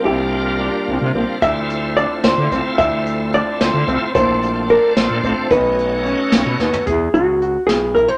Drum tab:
HH |----------|x-x-x-x-x-|x-x-x-x-x-|x-x-x-x-x-|
SD |----------|--o---o-o-|------o---|------o---|
FT |----------|----------|----------|----------|
BD |----------|o-------o-|o-------o-|o-------o-|

HH |x-x-x-x---|x-x-x-x-x-|
SD |------o-o-|------o---|
FT |---------o|----------|
BD |o---------|o-------o-|